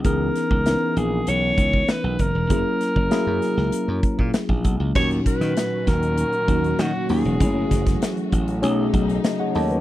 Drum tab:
CC |----------------|----------------|x---------------|----------------|
HH |x-x-x-x-x-x-x-x-|x-x-x-x-x-x-x-x-|-xxxx-xxxxxxx-ox|x-xxxxxxx-xxx-ox|
SD |--o-o-------o---|--o-o-oo----o---|---oo-o-----o---|--ooo-------o---|
BD |o--o------oo--o-|o--o------oo-oo-|o-o---o---o-----|o-oo--o---o-----|